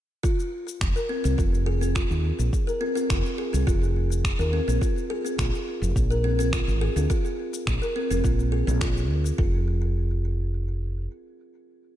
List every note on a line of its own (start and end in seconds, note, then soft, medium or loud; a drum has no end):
0.23 0.38 F4 loud
0.23 kick medium
0.23 cabasa medium
0.40 cabasa soft
0.68 cabasa medium
0.81 0.92 F1 medium
0.81 finger snap medium
0.81 kick medium
0.81 cabasa medium
0.96 1.08 A#4 medium
0.96 cabasa soft
1.09 1.23 C4 medium
1.24 1.34 C2 medium
1.24 1.37 C4 loud
1.24 cabasa medium
1.38 2.04 F1 medium
1.38 1.52 F4 medium
1.38 kick loud
1.38 cabasa medium
1.54 cabasa soft
1.66 1.80 G#4 medium
1.81 1.95 C4 medium
1.81 cabasa medium
1.95 2.09 F4 loud
1.95 finger snap loud
1.95 kick loud
1.95 cabasa medium
2.10 2.30 D#2 medium
2.10 cabasa soft
2.39 2.49 A#1 medium
2.39 cabasa medium
2.53 kick loud
2.53 cabasa medium
2.67 2.80 A#4 medium
2.67 cabasa soft
2.81 2.94 C4 loud
2.95 3.09 C4 loud
2.95 cabasa medium
3.10 3.21 F1 loud
3.10 3.24 F4 medium
3.10 finger snap loud
3.10 kick loud
3.10 cabasa medium
3.26 cabasa soft
3.38 3.52 G#4 loud
3.53 3.63 C2 medium
3.53 3.66 C4 medium
3.53 cabasa medium
3.67 4.32 F1 medium
3.67 3.81 F4 loud
3.67 kick loud
3.67 cabasa medium
3.83 cabasa soft
4.12 cabasa medium
4.25 finger snap loud
4.25 kick loud
4.25 cabasa medium
4.39 4.59 D#2 medium
4.39 4.51 A#4 medium
4.39 cabasa soft
4.53 4.67 C4 medium
4.68 4.77 A#1 medium
4.68 4.81 C4 medium
4.68 cabasa medium
4.81 4.95 F4 medium
4.81 kick loud
4.81 cabasa medium
4.98 cabasa soft
5.10 5.23 G#4 loud
5.25 5.38 C4 medium
5.25 cabasa medium
5.38 5.49 A#1 loud
5.38 5.53 F4 medium
5.38 finger snap loud
5.38 kick loud
5.38 cabasa medium
5.55 cabasa soft
5.82 5.91 F1 medium
5.82 cabasa medium
5.96 6.61 A#1 medium
5.96 kick loud
5.96 cabasa medium
6.10 6.23 A#4 medium
6.10 cabasa soft
6.24 6.38 C4 medium
6.39 6.52 C4 loud
6.39 cabasa medium
6.53 6.67 F4 medium
6.53 finger snap loud
6.53 kick loud
6.53 cabasa medium
6.67 6.87 G#1 medium
6.67 cabasa soft
6.81 6.95 G#4 loud
6.96 7.06 D2 medium
6.96 7.09 C4 medium
6.96 cabasa medium
7.10 7.24 F4 loud
7.10 kick loud
7.10 cabasa medium
7.25 cabasa soft
7.54 cabasa medium
7.67 7.78 A#1 loud
7.67 finger snap loud
7.67 kick loud
7.67 cabasa medium
7.82 7.94 A#4 medium
7.82 cabasa soft
7.96 8.09 C4 loud
8.10 8.20 F1 medium
8.10 8.23 C4 loud
8.10 cabasa medium
8.24 8.67 A#1 medium
8.24 8.38 F4 medium
8.24 kick loud
8.24 cabasa medium
8.39 cabasa soft
8.52 8.66 G#4 medium
8.67 9.10 A#1 medium
8.67 8.80 C4 medium
8.67 cabasa medium
8.81 8.95 F4 loud
8.81 finger snap medium
8.81 kick loud
8.81 cabasa medium
8.97 cabasa soft
9.10 9.30 D2 loud
9.26 cabasa medium
9.38 11.06 F1 medium
9.38 9.65 F4 medium
9.38 kick loud